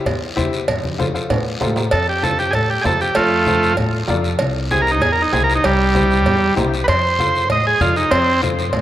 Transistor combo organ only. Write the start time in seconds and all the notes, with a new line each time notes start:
1.92 A4
2.09 G4
2.23 A4
2.39 G4
2.51 G#4
2.55 A4
2.70 G4
2.81 G#4
2.86 A4
3.01 G4
3.15 A3 F4
4.71 G#4
4.82 A#4
4.92 D#4
5.02 G#4
5.12 A#4
5.22 D#4
5.33 G#4
5.44 A#4
5.55 D#4
5.65 G3
6.84 B4
6.89 C5
7.52 D#5
7.67 G#4
7.81 F4
7.97 D#4
8.11 C4